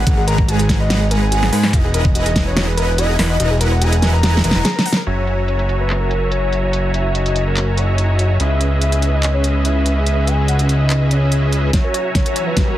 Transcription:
Already playing: F#5
0.07 G#1 G#3 F#4 G#4 B4 F#5 A#5, kick, closed hi-hat
0.18 G#4
0.27 A#4 A#5, closed hi-hat
0.38 B4, kick
0.48 F#4 G#5, closed hi-hat
0.59 G#4, closed hi-hat
0.69 A#4, kick, snare, closed hi-hat
0.80 B4 D#5
0.90 F#4, snare, closed hi-hat
1.01 G#4
1.11 A#4 G#5, closed hi-hat
1.22 B4
1.32 F#4, closed hi-hat
1.43 G#4, snare
1.52 G#2 G#3 G#4 A#4 B4 F#5 B5, open hi-hat
1.63 B4, snare
1.73 E1 E4 F#4 B4 D#5 F#5 G#5 A#5, kick, closed hi-hat
1.84 G#4
1.94 A#4, closed hi-hat
2.05 B4, kick
2.15 F#4 D#5, closed hi-hat
2.26 G#4, closed hi-hat
2.36 A#4, kick, snare, closed hi-hat
2.46 B4 C#5
2.56 F#4, snare, closed hi-hat
2.67 G#4 B4
2.77 A#4, closed hi-hat
2.88 B4
2.98 F#4 D#5, closed hi-hat
3.09 G#4
3.19 E1 E4 A#4 B4 D#5 F#5 G#5 B5, snare, open hi-hat
3.30 B4 D#5
3.40 E1 E4 F#4 B4 D#5 F#5 G#5 A#5, closed hi-hat
3.51 G#4
3.61 A#4 F#5, closed hi-hat
3.72 B4
3.81 F#4 G#5, closed hi-hat
3.92 G#4, closed hi-hat
4.02 A#4, snare, closed hi-hat
4.13 B4 A#5
4.23 F#4, snare, closed hi-hat
4.34 G#4, snare
4.44 E1 E4 A#4 B4 D#5 F#5 G#5 A#5, closed hi-hat
4.51 E1 E4 B4 D#5 F#5 G#5 C#6, snare
4.65 G#4, snare, closed hi-hat
4.76 A#4, snare
4.86 F#5, open hi-hat
4.93 snare
4.97 A#4
5.06 F#1 F#4 C#5 E5 G#5 A#5, closed hi-hat
5.27 closed hi-hat
5.48 C#5, closed hi-hat
5.59 closed hi-hat
5.69 closed hi-hat
5.80 B4
5.90 clap, closed hi-hat
6.01 A#4
6.11 closed hi-hat
6.31 C#5, closed hi-hat
6.53 closed hi-hat
6.63 C#5
6.73 closed hi-hat
6.94 E5, closed hi-hat
7.15 D#5, closed hi-hat
7.26 closed hi-hat
7.36 closed hi-hat
7.47 A#4
7.57 clap, closed hi-hat
7.77 D#5, closed hi-hat
7.98 closed hi-hat
8.19 closed hi-hat
8.40 C#2 C#4 G#4 B4 D#5 E5, closed hi-hat
8.61 closed hi-hat
8.82 E5, closed hi-hat
8.92 closed hi-hat
9.02 closed hi-hat
9.13 D#5
9.23 clap, closed hi-hat
9.34 C#5
9.44 closed hi-hat
9.65 E5, closed hi-hat
9.86 closed hi-hat
9.97 E5
10.06 closed hi-hat
10.27 G#5, closed hi-hat
10.48 F#5, closed hi-hat
10.59 closed hi-hat
10.69 closed hi-hat
10.80 D#5
10.90 clap, closed hi-hat
11.11 C#5, closed hi-hat
11.32 closed hi-hat
11.53 closed hi-hat
11.73 F#4 C#5 E5 G#5 A#5, kick, snare, closed hi-hat, riser
11.84 A#4
11.94 C#5, closed hi-hat
12.05 E5
12.15 F#4 C#5, kick, snare, closed hi-hat
12.26 A#4, closed hi-hat
12.36 C#5, closed hi-hat
12.47 B4 E5
12.57 F#4, kick, snare, closed hi-hat
12.68 A#4

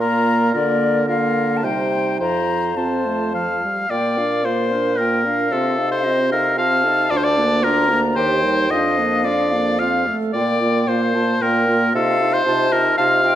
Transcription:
Already playing: A#2
0.00 A#3 F4 A#4 A#5
0.54 D3 A#3 F4 A#4 D5
1.08 A#3 F4 A#4 F5
1.57 A5
1.64 C3 G3 D#4 C5 G5
2.20 F2 F3 F4 C5 A#5
2.77 C4 F4 C5 A5
3.05 A3
3.34 F3 F5
3.62 G3
3.90 A#2 A#3 F4 D5 G5
4.17 D4 A#4 F5
4.45 A#3 F4 C5 F5
4.72 D4 A#4
4.98 A#3 F4 A#4 G5
5.25 D4 A#4 F5
5.51 C3 C4 F4 A4
5.78 D#4 A4
5.91 C5
6.04 C4 F4 D#5
6.30 D#4 A4 A#4 F5
6.57 C4 F4 F5 A5
6.83 D#4 A4
7.10 D2 D4 F4 D5
7.17 C5
7.24 D5
7.37 A#3 D4
7.63 D4 F4 A#4 A#5
7.90 A#3 D4
8.15 D#2 D#3 G4 C5 G5
8.43 G3 D#4
8.70 F2 D4 F4 D#5 F5
8.98 A#3 D4
9.24 D4 F4 D5
9.53 A#3 D4
9.79 C4 F4 F5
10.06 A3 A4
10.33 A#2 A#3 F4 D5 G5
10.61 A#3 F4
10.88 A#2 A#3 F4 C5 F5
11.15 A#3 F4 A5
11.41 A#2 A#3 F4 A#4 G5
11.68 A#3 F4
11.94 C3 D#4 F4 A4 F5
12.20 D#4 F4
12.33 C5
12.46 C3 D#4 F4 A5
12.72 D#4 F4 A#4
12.97 C3 D#4 F4 F5 A5
13.24 D#4 F4 G5

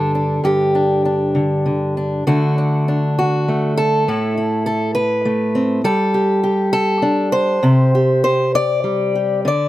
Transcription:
Already playing: G2 D3 D4 A4
0.15 D4
0.44 G2 G4
0.75 D4
1.05 D4
1.35 D3
1.66 D3
1.97 D4
2.27 D3 A3 D4 F#4
2.58 D4
2.88 D4
3.19 F#4
3.48 A3
3.77 A4
4.08 A2 E4
4.38 E4
4.66 A4
4.95 B4
5.25 A3
5.55 C4
5.84 G3 A4
6.14 G4
6.43 G4
6.73 A4
7.02 D4
7.32 C5
7.63 C3 G4
7.95 G4
8.24 C5
8.55 D5
8.84 G3
9.15 G4
9.45 D3 D5

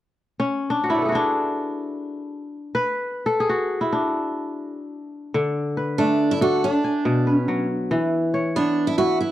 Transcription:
0.40 C#4
0.70 D4
0.84 F#4 F#5
0.89 E4 D5 E5
0.95 B4 C#5
1.02 G#4 A4
1.09 E4 F#4
1.15 D4
2.75 B4
3.26 A4
3.40 G#4
3.49 F#4
3.81 E4
3.92 D4
5.34 D3
5.77 B4
5.98 A3 D4
6.31 E4
6.41 D4 F#4 A4
6.64 D4
6.84 G#5
7.05 B2
7.27 B4
7.32 C#4
7.48 F#3
7.91 E3
8.34 C#5
8.56 B3 D4
8.87 E4
8.98 E4 F#4 B4
9.20 E4

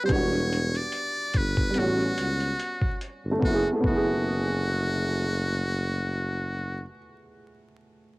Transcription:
0.03 G3 B3 C5
0.09 E1 D4 C#5, kick, closed hi-hat
0.15 F#4
0.53 closed hi-hat
0.75 D5, closed hi-hat
0.92 closed hi-hat
1.34 G1 B4, kick, closed hi-hat
1.57 kick
1.70 G3, closed hi-hat
1.74 A1 B3
1.79 C#4 F#4
2.18 C#2, closed hi-hat
2.40 closed hi-hat
2.60 closed hi-hat
2.82 kick
3.01 closed hi-hat
3.24 G1
3.31 A3
3.39 F#1 B3, kick
3.45 E4 F#4
3.55 G#4
3.73 A3
3.80 F#1 B3, kick
3.87 E4 F#4
3.96 G#4

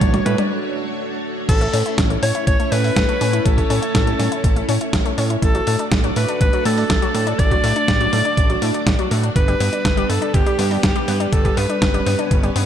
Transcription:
Already playing: A3 D4 F#4 C#5
0.01 A1, kick, closed hi-hat, mid tom
0.14 F#3, closed hi-hat, mid tom
0.26 A2 A3 B4, closed hi-hat, mid tom
0.38 D4, closed hi-hat, mid tom
1.49 A1 A3 C#4 E4 A4 C#5, kick, closed hi-hat, crash
1.61 A3, closed hi-hat
1.73 A2 C#4, open hi-hat
1.86 E4, closed hi-hat
1.98 A1, kick, snare, closed hi-hat
2.10 A3, closed hi-hat
2.22 A2 C#4 C#5, open hi-hat
2.35 E4, closed hi-hat
2.47 A1 C#5, kick, closed hi-hat
2.60 A3, closed hi-hat
2.71 A2 C#4 B4, open hi-hat
2.84 E4, open hi-hat
2.96 A1, kick, snare, closed hi-hat
3.09 A3, closed hi-hat
3.21 A2 C#4, open hi-hat
3.33 E4, closed hi-hat
3.45 A1 A4, kick, closed hi-hat
3.58 A3, kick, closed hi-hat
3.70 A2 C#4, open hi-hat
3.82 E4, closed hi-hat
3.95 A1, kick, snare, closed hi-hat
4.07 A3, closed hi-hat
4.19 A2 C#4, snare, open hi-hat
4.32 E4, closed hi-hat
4.44 A1, kick, closed hi-hat
4.56 A3, closed hi-hat
4.69 A2 C#4, open hi-hat
4.81 E4, closed hi-hat
4.93 A1, kick, snare, closed hi-hat
5.06 A3, closed hi-hat
5.18 A2 C#4, open hi-hat
5.30 E4, closed hi-hat
5.42 A1 A3 D4 F#4 A4 D5, kick, closed hi-hat
5.55 F#3, closed hi-hat
5.67 A2 A3, open hi-hat
5.79 D4, closed hi-hat
5.92 A1, kick, snare, closed hi-hat
6.04 F#3, closed hi-hat
6.16 A2 A3 B4, open hi-hat
6.29 D4, closed hi-hat
6.41 A1 B4, kick, closed hi-hat
6.53 F#3, closed hi-hat
6.65 A2 A3 A4, open hi-hat
6.78 D4, open hi-hat
6.90 A1, kick, snare, closed hi-hat
7.02 F#3, closed hi-hat
7.14 A2 A3, open hi-hat
7.27 D4, closed hi-hat
7.39 A1 D5, kick, closed hi-hat
7.51 F#3, kick, closed hi-hat
7.64 A2 A3, open hi-hat
7.76 D4, closed hi-hat
7.88 A1, kick, snare, closed hi-hat
8.01 F#3, closed hi-hat
8.13 A2 A3, snare, open hi-hat
8.25 D4, closed hi-hat
8.37 A1, kick, closed hi-hat
8.50 F#3, closed hi-hat
8.62 A2 A3, open hi-hat
8.74 D4, closed hi-hat
8.87 A1, kick, snare, closed hi-hat
8.99 F#3, closed hi-hat
9.11 A2 A3, open hi-hat
9.24 D4, closed hi-hat
9.35 G1 G3 B3 B4, kick, closed hi-hat
9.48 G3, closed hi-hat
9.60 G2 B3, open hi-hat
9.73 D4, closed hi-hat
9.85 G1, kick, snare, closed hi-hat
9.97 G3, closed hi-hat
10.09 G2 B3 A4, open hi-hat
10.22 D4, closed hi-hat
10.34 G1 G4, kick, closed hi-hat
10.46 G3, closed hi-hat
10.59 G2 B3, open hi-hat
10.71 D4, open hi-hat
10.83 G1 G4, kick, snare, closed hi-hat
10.96 G3, closed hi-hat
11.08 G2 B3, open hi-hat
11.20 D4, closed hi-hat
11.32 G1 C#4 A4, kick, closed hi-hat
11.45 G3, kick, closed hi-hat
11.57 G2 B3 B4, open hi-hat
11.70 D4, closed hi-hat
11.82 G1, kick, snare, closed hi-hat
11.94 G3, closed hi-hat
12.06 G2 B3, snare, open hi-hat
12.19 D4, closed hi-hat
12.31 G1, kick, closed hi-hat
12.43 G3, closed hi-hat
12.56 G2 B3, open hi-hat

